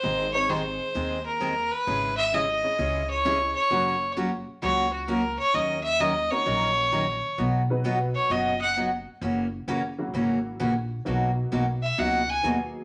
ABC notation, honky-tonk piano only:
X:1
M:4/4
L:1/8
Q:"Swing" 1/4=131
K:B
V:1 name="Honky-tonk piano"
z [G,^B,DG^B]3 z4 | z3 [G,CEGc]3 [G,CEGc] z | [A,CFAc] z6 z | z3 [A,CDFA]3 z2 |
z [F,B,DFB]3 z4 | z3 [F,A,CEF]3 z2 | [F,A,B,DF]3 z3 [F,A,B,DG]2 |]